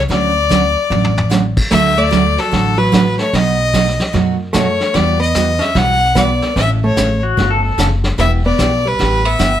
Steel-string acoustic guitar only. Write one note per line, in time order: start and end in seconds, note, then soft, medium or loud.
0.08 0.30 D3 medium
0.08 0.31 F#3 medium
0.08 0.31 A3 medium
0.08 0.31 C#4 medium
0.08 0.31 F#4 medium
0.49 0.61 D3 medium
0.49 0.61 F#3 medium
0.49 0.61 A3 medium
0.49 0.62 C#4 medium
0.49 0.62 F#4 medium
0.91 1.12 D3 medium
0.91 1.12 F#3 medium
0.91 1.12 A3 medium
0.91 1.12 C#4 medium
0.91 1.13 F#4 medium
1.30 1.42 D3 medium
1.30 1.42 F#3 medium
1.30 1.42 A3 medium
1.30 1.42 C#4 medium
1.30 1.42 F#4 medium
1.71 1.93 D3 medium
1.71 1.93 F#3 medium
1.71 1.93 A3 medium
1.71 1.93 D4 medium
1.71 1.93 F#4 medium
2.10 2.22 D3 medium
2.10 2.22 F#3 medium
2.10 2.23 A3 medium
2.10 2.22 D4 medium
2.10 2.23 F#4 medium
2.51 2.73 D3 medium
2.51 2.73 F#3 medium
2.51 2.74 A3 medium
2.51 2.74 D4 medium
2.51 2.74 F#4 medium
2.92 3.04 D3 medium
2.92 3.04 F#3 medium
2.92 3.04 A3 medium
2.92 3.04 D4 medium
2.92 3.04 F#4 medium
3.33 3.55 B2 medium
3.33 3.55 F#3 medium
3.33 3.55 A3 medium
3.33 3.55 D#4 medium
3.33 3.55 F#4 medium
3.74 3.85 B2 medium
3.74 3.85 F#3 medium
3.74 3.85 A3 medium
3.74 3.86 D#4 medium
3.74 3.86 F#4 medium
4.13 4.35 B2 medium
4.13 4.35 F#3 medium
4.13 4.35 A3 medium
4.13 4.35 D#4 medium
4.13 4.35 F#4 medium
4.53 4.65 B2 medium
4.53 4.65 F#3 medium
4.53 4.65 A3 medium
4.53 4.66 D#4 medium
4.53 4.66 F#4 medium
4.95 5.16 E3 medium
4.95 5.17 G3 medium
4.95 5.17 B3 medium
4.95 5.17 F#4 medium
5.35 5.46 E3 medium
5.35 5.47 G3 medium
5.35 5.47 B3 medium
5.35 5.47 F#4 medium
5.75 5.97 E3 medium
5.75 5.97 G3 medium
5.75 5.97 B3 medium
5.75 5.97 F#4 medium
6.15 6.27 E3 medium
6.15 6.27 G3 medium
6.15 6.27 B3 medium
6.15 6.27 F#4 medium
6.56 6.78 C#3 medium
6.56 6.78 E3 medium
6.56 6.78 A3 medium
6.56 6.79 C#4 medium
6.56 6.79 A4 medium
6.97 7.08 C#3 medium
6.97 7.08 E3 medium
6.97 7.08 A3 medium
6.97 7.09 C#4 medium
6.97 7.09 A4 medium
7.37 7.59 C#3 medium
7.37 7.59 E3 medium
7.37 7.59 A3 medium
7.37 7.60 C#4 medium
7.37 7.59 A4 medium
7.78 7.89 C#3 medium
7.78 7.89 E3 medium
7.78 7.90 A3 medium
7.78 7.90 C#4 medium
7.78 7.90 A4 medium
8.18 8.40 E3 medium
8.18 8.40 B3 medium
8.18 8.40 E4 medium
8.18 8.40 G4 medium
8.59 8.70 E3 medium
8.59 8.70 B3 medium
8.59 8.71 E4 medium
8.59 8.70 G4 medium
8.99 9.20 E3 medium
8.99 9.20 B3 medium
8.99 9.21 E4 medium
8.99 9.21 G4 medium
9.39 9.50 E3 medium
9.39 9.51 B3 medium
9.39 9.51 E4 medium
9.39 9.51 G4 medium